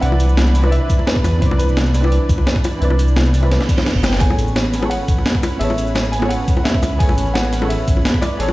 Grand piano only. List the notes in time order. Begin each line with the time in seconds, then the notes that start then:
0.01 F#5
0.71 E5
1.06 B4
1.41 C5
1.58 B4
4.20 G#5
4.90 F#5
5.59 E5
6.12 G#5
6.29 F#5
6.57 F#5
6.64 E5
6.99 G#5
7.34 F#5
7.69 E5
8.21 D5
8.39 C#5